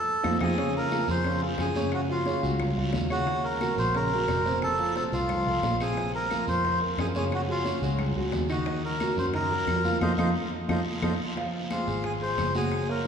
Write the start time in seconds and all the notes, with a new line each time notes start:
Already playing: A4 A5
0.23 F2 C4 D#4 F4, low bongo, high conga, long guiro, claves
0.41 F2 C4 D#4 F4 G#4 G#5, low bongo, high conga, long guiro, claves
0.58 C#3 C#4 C#5, high bongo, high conga, long guiro
0.75 A#4 A#5, high conga
0.91 F3 F4 G#4, high bongo, high conga, short guiro, claves
1.08 F2 C5 C6, short guiro
1.24 C#3 C#4 C#5, high bongo, high conga, long guiro
1.42 F3 F4 G#4, high conga
1.58 F#2 G#4 G#5, high bongo, low bongo, high conga, short guiro, claves
1.75 C#3 C#4 C#5, high conga, short guiro
1.92 F#4 F#5, high bongo, high conga, long guiro, claves
2.09 F3 F4 F#4 F5, high bongo, high conga
2.26 C#3 C#4 C#5, high bongo, high conga, short guiro
2.43 C#2 F#3 F4 F#4, high bongo, high conga, short guiro
2.60 high bongo, high conga, low conga, long guiro, claves
2.77 C#2 F#3 F4 F#4, high conga
2.93 D#2, high bongo, low bongo, high conga, short guiro
3.10 C#3 C#4 F#4 C#5 F#5, high bongo, high conga, short guiro, claves
3.27 C#3 C#4 C#5, high bongo, high conga, long guiro
3.44 A#4 A#5, high conga
3.61 F#3 F#4 A#4, high bongo, high conga, short guiro, claves
3.77 A#1 C5 C6, short guiro
3.95 C#3 C#4 A#4 C#5 A#5, high bongo, high conga, long guiro
4.12 F#3 F#4 A#4, high conga
4.28 F1, high bongo, low bongo, high conga, short guiro, claves
4.45 C3 C4 C5, high conga, short guiro
4.62 A4 A5, high bongo, high conga, long guiro, claves
4.79 F3 F4 A4, high bongo, high conga
4.96 C3 C4 A4 C5 A5, high bongo, high conga, short guiro
5.12 C2 F3 F4 A4 F5, high bongo, high conga, short guiro
5.29 high bongo, high conga, low conga, long guiro, claves
5.46 C2 F3 F4 A4, high conga
5.63 A#1, high bongo, low bongo, high conga, short guiro
5.80 C3 C4 G#4 C5 G#5, high bongo, high conga, short guiro, claves
5.97 C3 C4 C5, high bongo, high conga, long guiro
6.14 A#4 A#5, high conga
6.30 F3 F4 A#4, high bongo, high conga, short guiro, claves
6.47 F2 C5 C6, short guiro
6.64 C3 C4 C5, high bongo, high conga, long guiro
6.81 F3 F4 A#4, high conga
6.98 F#2 G#4 G#5, high bongo, low bongo, high conga, short guiro, claves
7.15 C#3 C#4 G#4 C#5 G#5, high conga, short guiro
7.32 F#4 F#5, high bongo, high conga, long guiro, claves
7.48 F#3 F4 F#4 G#4 F5, high bongo, high conga
7.65 C#3 C#4 C#5, high bongo, high conga, short guiro
7.82 C#2 F#3 F#4 G#4, high bongo, short guiro
7.99 high bongo, high conga, low conga, long guiro, claves
8.16 C#2 F#3 F#4 G#4, high conga
8.32 D#2, high bongo, low bongo, high conga, short guiro
8.49 D#3 D#4 F#4 D#5 F#5, high bongo, high conga, short guiro, claves
8.66 D#3 D#4 D#5, high bongo, high conga, long guiro
8.84 A#4 A#5, high conga
9.00 F#3 F#4 A#4, high bongo, high conga, short guiro, claves
9.17 F#2 C5 C6, short guiro
9.34 D#3 D#4 A#4 D#5 A#5, high bongo, high conga, long guiro
9.51 F#3 F#4 A#4, high conga
9.67 F2, high bongo, low bongo, high conga, short guiro, claves
9.84 F3 F4 F5, high conga, short guiro
10.01 F2 D#4 F4 A4 C5 D#5 F5, low bongo, high conga, long guiro, claves
10.18 F2 D#4 F4 A4 C5 D#5 F5, low bongo, high conga, long guiro, claves
10.68 F2 D#4 F4 A4 C5 D#5 F5, low bongo, high conga, long guiro, claves
11.02 F2 D#4 F4 A4 C5 D#5 F5, low bongo, high conga, long guiro, claves
11.37 F3 F4 F5, high bongo, high conga, long guiro
11.70 G#3 F4 G#4 C5 F5, high bongo, high conga, short guiro, claves
11.87 G#1 G#3 G#4 C5, high conga, short guiro
12.04 G#4 G#5, high bongo, high conga, long guiro
12.21 G#3 G#4 C5 C6, high conga
12.38 F#1, high bongo, low bongo, high conga, short guiro, claves
12.55 F#3 F#4 G#4 F#5 G#5, high conga, short guiro
12.71 high bongo, high conga, long guiro, claves
12.89 A#3 A#4 C#5 A#5, high bongo, high conga